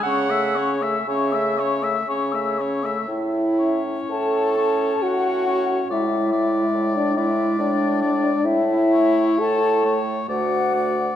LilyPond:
<<
  \new Staff \with { instrumentName = "Flute" } { \time 3/4 \key a \major \tempo 4 = 66 cis'''16 e'''16 cis'''16 e'''16 cis'''16 e'''16 cis'''16 e'''16 cis'''16 e'''16 cis'''16 e'''16 | e''4 a''4 fis''4 | e''4~ e''16 d''16 e''8 d''4 | e''4 a''8. r16 fis''4 | }
  \new Staff \with { instrumentName = "Oboe" } { \time 3/4 \key a \major cis''16 e''16 cis''16 e''16 cis''16 e''16 cis''16 e''16 cis''16 e''16 cis''16 e''16 | r8 cis''4 cis''4 cis''8 | d''8 d''4 d''4 d''8 | r8 cis''4 cis''8 d''8 d''8 | }
  \new Staff \with { instrumentName = "French horn" } { \time 3/4 \key a \major cis'16 a16 cis'16 a16 cis'16 a16 cis'16 a16 cis'16 a16 cis'16 a16 | e'4 a'4 fis'4 | e'4~ e'16 d'16 e'8 d'4 | e'4 a'8. r16 fis'4 | }
  \new Staff \with { instrumentName = "Clarinet" } { \time 3/4 \key a \major fis''8 r8 e''4 r4 | r8 cis'4 cis'4 cis'8 | gis8 gis4 gis4 gis8 | r8 a4 a8 a8 a8 | }
  \new Staff \with { instrumentName = "Bassoon" } { \clef bass \time 3/4 \key a \major cis4 cis4 cis4 | a,4 a,4 a,4 | a,4 a,4 a,4 | a,4 a,4 d,4 | }
>>